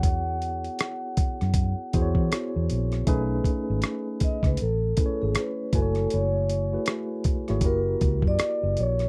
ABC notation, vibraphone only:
X:1
M:4/4
L:1/16
Q:"Swing 16ths" 1/4=79
K:F#dor
V:1 name="Vibraphone"
f12 z4 | z6 d B A3 G B2 A2 | c4 z4 ^A3 =d3 c2 |]